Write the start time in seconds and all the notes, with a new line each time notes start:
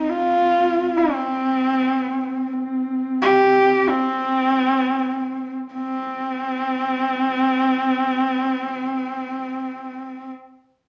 Already playing: C4 D#4
0.09 F4
0.96 C4
3.21 G4
3.89 C4
5.74 C4